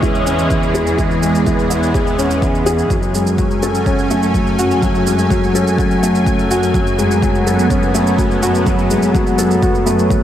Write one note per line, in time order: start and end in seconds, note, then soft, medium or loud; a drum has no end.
0.00 2.88 E2 medium
0.00 0.51 E3 medium
0.00 2.87 E3 medium
0.00 1.22 G#3 medium
0.00 2.87 G#3 medium
0.00 0.97 C#4 medium
0.00 0.26 E4 medium
0.00 2.87 G#4 medium
0.00 1.70 E5 medium
0.00 kick loud
0.00 shaker soft
0.15 shaker soft
0.26 0.49 C#4 medium
0.26 shaker medium
0.39 shaker soft
0.50 0.74 E3 medium
0.50 kick medium
0.50 shaker soft
0.63 shaker soft
0.75 0.97 G#4 medium
0.75 shaker medium
0.87 shaker soft
0.98 1.21 E3 medium
0.98 2.89 B3 medium
0.98 kick loud
0.98 shaker soft
1.11 shaker soft
1.22 1.36 G#3 medium
1.22 shaker medium
1.35 shaker soft
1.47 1.70 E3 medium
1.47 kick medium
1.47 shaker soft
1.59 shaker soft
1.70 1.93 E5 medium
1.70 shaker medium
1.83 shaker soft
1.94 2.18 G#4 medium
1.94 kick loud
1.94 shaker soft
2.07 shaker soft
2.18 2.41 C#4 medium
2.18 shaker medium
2.31 shaker soft
2.42 2.65 E3 medium
2.42 kick loud
2.42 shaker soft
2.55 shaker soft
2.66 2.89 G#4 medium
2.66 shaker medium
2.78 shaker soft
2.90 10.23 F#2 medium
2.90 10.23 F#3 medium
2.90 3.13 F#3 medium
2.90 6.70 C#4 medium
2.90 10.23 G#5 medium
2.90 kick medium
2.90 shaker soft
3.03 shaker soft
3.14 3.37 G#3 medium
3.14 shaker medium
3.27 shaker soft
3.38 3.62 F#3 medium
3.38 kick medium
3.38 shaker soft
3.51 shaker soft
3.63 3.86 A4 medium
3.63 shaker medium
3.75 shaker soft
3.86 4.10 C#4 medium
3.86 kick loud
3.86 shaker soft
3.99 shaker soft
4.11 4.34 A3 medium
4.11 shaker medium
4.23 shaker soft
4.34 4.58 F#3 medium
4.34 kick medium
4.34 shaker soft
4.47 shaker soft
4.59 4.82 F#4 loud
4.59 shaker medium
4.71 shaker soft
4.82 5.06 F#3 medium
4.82 kick medium
4.82 shaker soft
4.95 shaker soft
5.07 5.21 G#3 medium
5.07 shaker medium
5.19 shaker soft
5.30 5.54 F#3 medium
5.30 kick medium
5.30 shaker soft
5.44 shaker soft
5.55 5.78 A4 medium
5.55 shaker medium
5.67 shaker soft
5.78 6.02 F#4 medium
5.78 kick loud
5.78 shaker soft
5.91 shaker soft
6.03 6.26 A3 medium
6.03 shaker medium
6.15 shaker soft
6.26 6.49 F#3 medium
6.26 kick medium
6.26 shaker soft
6.39 shaker soft
6.51 6.74 F#4 medium
6.51 shaker medium
6.63 shaker soft
6.74 6.97 F#3 medium
6.74 10.23 B3 medium
6.74 kick medium
6.74 shaker soft
6.87 shaker soft
6.98 7.21 G#3 medium
6.98 shaker medium
7.11 shaker soft
7.22 7.46 F#3 medium
7.22 kick medium
7.22 shaker soft
7.35 shaker soft
7.47 7.70 A4 medium
7.47 shaker medium
7.59 shaker soft
7.70 7.94 C#4 medium
7.70 kick loud
7.70 shaker soft
7.83 shaker soft
7.95 8.18 A3 medium
7.95 shaker medium
8.07 shaker soft
8.18 8.42 F#3 medium
8.18 kick medium
8.18 shaker soft
8.31 shaker soft
8.42 8.65 F#4 loud
8.42 shaker medium
8.55 shaker soft
8.66 8.89 F#3 medium
8.66 kick loud
8.66 shaker soft
8.79 shaker soft
8.90 9.04 G#3 medium
8.90 shaker medium
9.02 shaker soft
9.15 9.38 F#3 medium
9.15 kick medium
9.15 shaker soft
9.27 shaker soft
9.38 9.61 A4 medium
9.38 shaker medium
9.51 shaker soft
9.63 9.86 F#4 medium
9.63 kick loud
9.63 shaker soft
9.75 shaker soft
9.86 10.09 A3 medium
9.86 shaker medium
9.99 shaker soft
10.10 10.23 F#3 medium
10.10 kick medium
10.10 shaker soft